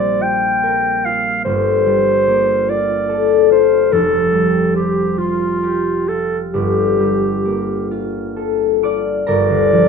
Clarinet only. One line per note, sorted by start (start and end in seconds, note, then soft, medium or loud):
0.00 0.24 D5 medium
0.22 1.07 G5 medium
1.05 1.44 F5 medium
1.45 2.71 C5 medium
2.69 3.50 D5 medium
3.51 3.94 C5 medium
3.92 4.75 A4 medium
4.76 5.20 G4 medium
5.18 6.10 F4 medium
6.08 6.40 A4 medium
6.54 7.89 G4 medium
9.27 9.88 D5 medium